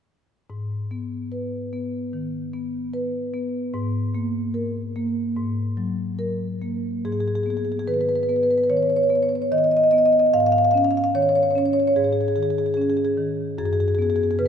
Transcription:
0.50 2.09 G#2 soft
0.91 1.56 B3 soft
1.32 1.97 B4 soft
1.73 2.38 B3 soft
2.13 2.78 D#3 soft
2.53 3.18 B3 soft
2.94 3.58 B4 medium
3.34 3.74 B3 soft
3.74 5.32 G#2 medium
4.15 4.79 A#3 soft
4.54 5.20 A#4 soft
4.96 5.62 A#3 medium
5.36 7.01 G#2 medium
5.77 6.45 F#3 soft
6.19 6.88 A#4 soft
6.62 7.05 A#3 soft
7.05 8.66 G#2 soft
7.05 7.12 G#4 medium
7.12 7.20 G#4 soft
7.20 7.28 G#4 soft
7.28 7.35 G#4 soft
7.35 7.43 G#4 medium
7.43 8.12 B3 soft
7.43 7.50 G#4 soft
7.50 7.57 G#4 soft
7.57 7.65 G#4 soft
7.65 7.72 G#4 soft
7.72 7.79 G#4 soft
7.79 7.84 G#4 medium
7.87 8.53 D#3 soft
7.87 7.94 B4 medium
7.94 8.01 B4 soft
8.01 8.09 B4 soft
8.09 8.15 B4 soft
8.15 8.23 B4 soft
8.23 8.29 B4 soft
8.29 8.94 B3 soft
8.29 8.36 B4 soft
8.36 8.43 B4 soft
8.43 8.51 B4 soft
8.51 8.58 B4 soft
8.58 8.64 B4 medium
8.64 8.66 B4 soft
8.70 9.36 D#3 soft
8.70 8.77 C#5 medium
8.77 8.83 C#5 soft
8.83 8.90 C#5 medium
8.90 8.96 C#5 soft
8.96 9.03 C#5 medium
9.03 9.09 C#5 soft
9.09 9.76 B3 soft
9.09 9.16 C#5 medium
9.16 9.23 C#5 soft
9.23 9.29 C#5 medium
9.29 9.35 C#5 soft
9.35 9.42 C#5 soft
9.42 9.49 C#5 soft
9.52 10.17 D#3 soft
9.52 9.58 D#5 medium
9.58 9.64 D#5 medium
9.64 9.71 D#5 medium
9.71 9.77 D#5 medium
9.77 9.83 D#5 medium
9.83 9.91 D#5 medium
9.91 10.34 B3 soft
9.91 9.98 D#5 medium
9.98 10.06 D#5 medium
10.06 10.13 D#5 medium
10.13 10.19 D#5 medium
10.19 10.26 D#5 medium
10.26 10.30 D#5 medium
10.34 11.92 G#2 medium
10.34 10.40 F5 medium
10.40 10.46 F5 medium
10.46 10.52 F5 medium
10.52 10.58 F5 medium
10.58 10.65 F5 medium
10.65 10.71 F5 medium
10.71 11.39 C#4 soft
10.71 10.78 F5 medium
10.78 10.84 F5 medium
10.84 10.91 F5 medium
10.91 10.97 F5 medium
10.97 11.04 F5 medium
11.04 11.12 F5 medium
11.15 11.80 D#3 soft
11.15 11.22 C#5 medium
11.22 11.29 C#5 medium
11.29 11.36 C#5 medium
11.36 11.43 C#5 medium
11.43 11.51 C#5 medium
11.51 11.58 C#5 medium
11.55 12.20 C#4 soft
11.55 11.65 C#5 medium
11.65 11.73 C#5 medium
11.73 11.80 C#5 medium
11.80 11.88 C#5 medium
11.88 11.93 C#5 medium
11.96 13.54 G#2 soft
11.96 12.04 G#4 medium
12.04 12.13 G#4 medium
12.13 12.21 G#4 medium
12.21 12.28 G#4 medium
12.28 12.36 G#4 medium
12.36 13.01 D#3 soft
12.36 12.43 G#4 medium
12.43 12.50 G#4 medium
12.50 12.58 G#4 medium
12.58 12.66 G#4 medium
12.66 12.74 G#4 medium
12.74 13.42 C#4 soft
12.74 12.81 G#4 medium
12.81 12.90 G#4 medium
12.90 12.97 G#4 medium
12.97 13.05 G#4 medium
13.05 13.13 G#4 medium
13.18 13.58 D#3 soft
13.58 14.48 F#2 medium
13.58 13.65 G#4 medium
13.65 13.73 G#4 medium
13.73 13.80 G#4 medium
13.80 13.88 G#4 medium
13.88 13.95 G#4 medium
13.95 14.48 B3 soft
13.95 14.02 G#4 medium
14.02 14.10 G#4 medium
14.10 14.16 G#4 medium
14.16 14.23 G#4 medium
14.23 14.31 G#4 medium
14.31 14.36 G#4 medium
14.39 14.48 C#3 soft
14.39 14.48 B4 medium

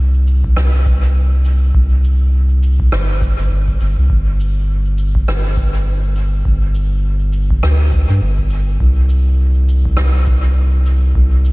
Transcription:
0.00 0.54 C2 loud
0.27 cabasa medium
0.44 kick loud
0.57 1.72 C2 medium
0.57 cross-stick medium
0.86 kick loud
0.86 cabasa medium
1.45 cabasa medium
1.75 2.90 C2 loud
1.75 kick loud
2.04 cabasa medium
2.63 cabasa medium
2.80 kick loud
2.92 3.35 G1 medium
2.92 cross-stick medium
3.22 kick loud
3.22 cabasa medium
3.38 3.50 G1 medium
3.51 3.77 G1 medium
3.68 kick medium
3.81 3.95 G1 medium
3.81 cabasa medium
3.98 4.08 C2 medium
4.10 5.25 G1 loud
4.10 kick loud
4.40 cabasa medium
4.98 cabasa medium
5.15 kick loud
5.28 6.43 G1 medium
5.28 cross-stick medium
5.57 kick loud
5.57 cabasa medium
6.16 cabasa medium
6.45 7.60 G1 loud
6.45 kick loud
6.75 cabasa medium
7.33 cabasa medium
7.51 kick loud
7.63 8.06 D2 medium
7.63 cross-stick loud
7.92 kick loud
7.92 cabasa medium
8.09 8.21 G2 medium
8.22 8.78 G1 loud
8.39 kick medium
8.50 cabasa medium
8.80 9.96 C2 loud
8.80 kick loud
9.09 cabasa medium
9.69 cabasa medium
9.85 kick loud
9.97 11.13 C2 medium
9.97 cross-stick medium
10.26 kick loud
10.26 cabasa medium
10.86 cabasa medium
11.15 11.53 C2 loud
11.15 kick loud
11.45 cabasa medium

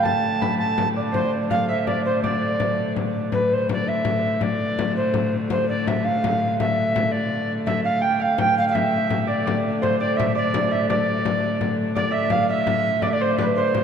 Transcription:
0.00 3.32 D3 medium
0.00 3.31 A3 medium
0.00 0.21 D5 medium
0.00 1.12 F5 medium
0.00 1.40 G5 medium
0.00 0.58 A5 medium
0.00 0.41 B5 medium
0.05 0.57 A5 medium
0.05 frame drum medium
0.24 frame drum soft
0.41 1.18 B5 medium
0.41 frame drum medium
0.58 0.88 A5 medium
0.58 2.03 A5 medium
0.58 frame drum soft
0.78 frame drum medium
0.96 1.86 D5 medium
1.12 2.06 C5 medium
1.12 1.31 C5 medium
1.12 frame drum medium
1.33 frame drum soft
1.50 1.74 F5 medium
1.50 1.68 F5 medium
1.50 frame drum medium
1.68 3.41 E5 medium
1.68 1.88 E5 medium
1.68 frame drum soft
1.87 2.23 D5 medium
1.87 2.04 D5 medium
1.87 frame drum medium
2.05 2.22 C5 medium
2.05 4.04 C5 medium
2.23 2.92 D5 medium
2.23 4.08 D5 medium
2.23 frame drum medium
2.43 frame drum soft
2.60 frame drum medium
2.78 frame drum soft
2.96 frame drum medium
3.15 frame drum soft
3.31 7.66 D3 medium
3.31 7.67 A3 medium
3.31 3.55 B4 medium
3.31 frame drum medium
3.50 3.70 C5 medium
3.50 frame drum soft
3.69 3.90 D5 medium
3.69 frame drum medium
3.88 4.44 E5 medium
3.88 frame drum soft
4.05 frame drum medium
4.41 4.95 D5 medium
4.41 frame drum medium
4.60 frame drum soft
4.79 frame drum medium
4.96 5.34 C5 medium
4.96 frame drum soft
5.14 frame drum medium
5.50 5.68 C5 medium
5.50 frame drum medium
5.68 5.89 D5 medium
5.68 frame drum soft
5.87 6.06 E5 medium
5.87 frame drum loud
6.04 6.58 F5 medium
6.04 frame drum soft
6.24 frame drum medium
6.59 7.13 E5 medium
6.59 frame drum medium
6.78 frame drum soft
6.96 frame drum loud
7.12 7.53 D5 loud
7.66 11.97 D3 medium
7.66 11.97 A3 medium
7.66 7.83 E5 medium
7.66 7.91 E5 medium
7.66 frame drum medium
7.84 8.03 F5 loud
7.84 8.19 F5 medium
7.84 frame drum soft
8.01 8.38 G5 medium
8.01 8.23 G5 medium
8.19 8.78 F5 medium
8.19 8.41 F5 medium
8.19 frame drum soft
8.38 9.94 G5 medium
8.38 8.57 G5 loud
8.38 frame drum medium
8.57 8.67 F5 loud
8.68 9.06 E5 medium
8.68 8.76 F5 medium
8.74 9.22 E5 medium
8.74 frame drum medium
8.93 frame drum soft
9.07 10.18 E5 medium
9.07 frame drum medium
9.22 9.30 E5 medium
9.27 9.45 D5 medium
9.27 9.58 D5 medium
9.27 frame drum soft
9.45 10.00 D5 medium
9.45 frame drum medium
9.82 9.99 C5 medium
9.82 11.80 C5 medium
9.82 frame drum medium
9.99 10.18 D5 medium
9.99 10.34 D5 medium
9.99 frame drum soft
10.17 10.35 E5 medium
10.17 10.71 E5 medium
10.17 frame drum loud
10.35 10.89 D5 medium
10.35 10.73 D5 loud
10.35 frame drum soft
10.54 frame drum loud
10.71 12.10 E5 medium
10.71 10.88 E5 medium
10.89 11.74 D5 medium
10.89 11.95 D5 medium
10.89 frame drum medium
11.25 frame drum loud
11.44 frame drum soft
11.61 frame drum medium
11.95 13.84 D3 medium
11.95 13.84 A3 medium
11.95 13.03 D5 medium
11.95 12.14 D5 loud
11.95 frame drum medium
12.11 12.38 E5 medium
12.11 12.32 E5 loud
12.11 frame drum soft
12.30 12.48 F5 loud
12.30 12.55 F5 medium
12.30 frame drum medium
12.49 13.03 E5 loud
12.49 13.84 E5 medium
12.49 frame drum soft
12.67 frame drum medium
12.84 frame drum soft
13.02 13.09 D5 loud
13.02 13.12 D5 medium
13.02 frame drum medium
13.07 13.14 E5 medium
13.13 13.84 D5 medium
13.13 13.23 D5 loud
13.21 13.45 C5 medium
13.21 13.39 C5 loud
13.21 frame drum soft
13.39 13.64 B4 medium
13.39 13.45 B4 medium
13.39 frame drum medium
13.55 13.84 C5 medium
13.55 13.77 C5 medium
13.55 frame drum soft
13.75 13.84 C5 medium
13.75 frame drum medium

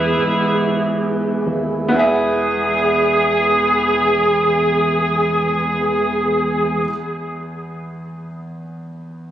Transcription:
0.00 0.13 E2 medium
0.00 0.56 E3 soft
0.00 1.89 G#3 soft
0.00 0.99 B3 medium
0.00 1.87 B3 medium
0.00 1.89 B3 soft
0.00 1.00 E4 medium
0.00 1.89 E4 medium
0.00 1.90 E4 soft
0.00 1.04 G#4 medium
0.00 1.89 G#4 medium
0.00 1.91 G#4 medium
0.00 1.92 E5 medium
0.17 1.43 G#2 medium
1.46 1.90 D#2 medium
1.88 6.80 B3 medium
1.88 6.84 E4 medium
1.93 6.84 E1 medium
1.93 6.86 E2 medium
1.93 6.86 E3 medium
1.93 6.86 G#3 medium
1.93 6.85 B3 medium
1.93 6.86 G#4 medium
1.93 6.88 G#4 medium
1.97 6.89 G#4 medium
1.97 6.91 E5 medium

